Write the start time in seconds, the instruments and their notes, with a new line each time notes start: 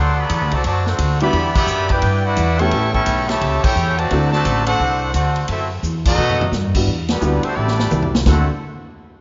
Already playing: upright bass D2, trombone section F#3 A3 C4, trumpet section A4 D5 F#5 C6
0.16 trombone section C3 F#3 B3, trumpet section A4 D5 F#5 B5
0.29 upright bass E2, kick, hi-hat pedal, ride
0.41 upright bass D2
0.50 upright bass C2, trombone section C3 F#3 A3, trumpet section C5 D5 A5, ride
0.54 trumpet section F#4
0.63 upright bass F#2, trombone section C3 F#3 A3, trumpet section F#4 C5 D5 A5, kick, ride
0.85 trombone section A3 C4 F#4, trumpet section D4 A4 C5 F#5, snare
0.98 upright bass D2, kick, hi-hat pedal, ride
1.20 trombone section D3 G3 B3, grand piano G3 B3 D4 E4 F#4, trumpet section G4 D5 E5 B5, ride
1.33 upright bass E2, kick, ride
1.53 trombone section D3 G3 B3, trumpet section G4 D5 E5 B5, kick, crash
1.66 upright bass F#2, hi-hat pedal
1.89 trombone section B3 D4 G4, trumpet section E4 B4 D5 G5, kick, ride
2.02 upright bass G2, kick, ride
2.23 trombone section B3 D4 F#4, trumpet section E4 B4 D5 F#5
2.37 upright bass E2, kick, hi-hat pedal, ride
2.58 trombone section E3 G3 C#4, grand piano A3 B3 C#4 E4 G4, trumpet section A4 E5 G5 C#6, ride
2.71 upright bass A1, grand piano A3 B3 C#4 E4 G4, kick, ride
2.93 trombone section E3 G3 C#4, trumpet section A4 E5 G5 C#6, kick
3.06 upright bass B1, kick, hi-hat pedal, ride
3.28 trombone section C#3 E3 A3, trumpet section G4 C#5 E5 A5, snare, ride
3.41 upright bass C#2, kick, ride
3.62 trombone section C#4 E4 G4, trumpet section E4 A4 C#5 G5, muted upright bass stroke, kick, crash
3.76 upright bass E2, hi-hat pedal
3.97 trombone section C3 F#3 A3, trumpet section F#4 C5 D5 A5, ride
4.11 upright bass D2, grand piano A3 C4 D4 E4 F#4, kick, ride
4.32 trombone section C3 F#3 A3, trumpet section F#4 C5 D5 A5, snare
4.45 upright bass A1, kick, hi-hat pedal, ride
4.66 trombone section A3 C4 F#4, trumpet section D4 A4 C5 F#5, ride
4.80 upright bass C2, kick
5.14 upright bass D2, trombone section A3 C4 F#4, trumpet section D4 A4 C5 F#5, kick, hi-hat pedal, ride
5.36 ride
5.48 upright bass F#2, trombone section A3 C4 E4, trumpet section C4 F#4 A4 E5, kick, ride
5.83 upright bass E2, hi-hat pedal
6.05 trombone section F#3 A3 D#4, trumpet section B3 F#4 A4 D#5, kick, crash
6.18 upright bass B2
6.30 floor tom
6.41 floor tom
6.52 upright bass G2, snare, hi-hat pedal
6.75 grand piano G3 B3 D4 E4 F#4, kick, crash
6.87 upright bass E2, kick
7.08 trombone section D3 G3 B3, trumpet section G3 D4 F#4 B4, snare, ride
7.21 upright bass D2, grand piano G3 B3 D4 E4 F#4, hi-hat pedal
7.43 trumpet section A3 D4 F#4 C5, trombone section C4, muted upright bass stroke, ride
7.55 upright bass A1, trombone section E3 G3 D4, trumpet section A3 E4 G4 D5
7.68 snare
7.79 snare
7.91 upright bass C2, hi-hat pedal, high tom
8.02 floor tom
8.15 snare
8.26 upright bass D2, trombone section D3 A3 C4 F#4, grand piano A3 C4 D4 E4 F#4, trumpet section E4 A4 C5 F#5, kick, snare, crash